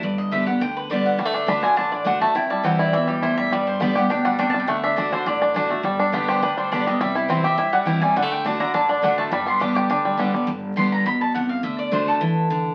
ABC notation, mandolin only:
X:1
M:4/4
L:1/8
Q:1/4=207
K:G
V:1 name="Mandolin"
d _e =e f g B d f- | f z b _a =a d f a | g a f d e G c e | d c d f g f (3g a g |
f e d c d4- | d2 z c B c d _e | e G c e e f g _a | f g a _b a d f a |
b c' d' d'3 z2 | z2 c' _b =b a f =f | e d c A4- A |]